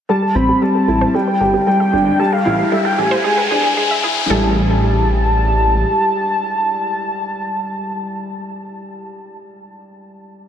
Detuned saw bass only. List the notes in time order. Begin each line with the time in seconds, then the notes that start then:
0.35 A1
0.88 A1
1.41 G1
1.93 G1
2.46 A1
2.98 A1
3.51 E1
4.04 E1
4.30 A1